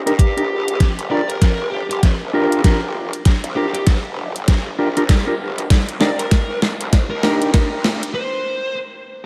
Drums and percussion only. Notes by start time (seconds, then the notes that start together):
0.07 closed hi-hat
0.19 kick, closed hi-hat
0.38 closed hi-hat
0.68 closed hi-hat
0.80 kick, snare, closed hi-hat
0.99 closed hi-hat
1.30 closed hi-hat
1.42 kick, snare, closed hi-hat
1.91 closed hi-hat
2.03 kick, snare, closed hi-hat
2.52 closed hi-hat
2.64 kick, snare, closed hi-hat
3.13 closed hi-hat
3.25 kick, snare, closed hi-hat
3.44 closed hi-hat
3.75 closed hi-hat
3.87 kick, snare, closed hi-hat
4.36 closed hi-hat
4.48 kick, snare, closed hi-hat
4.97 closed hi-hat
5.09 kick, snare, closed hi-hat
5.58 closed hi-hat
5.70 kick, snare, closed hi-hat
5.89 closed hi-hat
6.01 snare
6.19 closed hi-hat
6.31 kick, snare, closed hi-hat
6.62 snare
6.81 closed hi-hat
6.93 kick, snare, closed hi-hat
7.23 snare
7.42 closed hi-hat
7.54 kick, snare, closed hi-hat
7.84 snare
8.03 closed hi-hat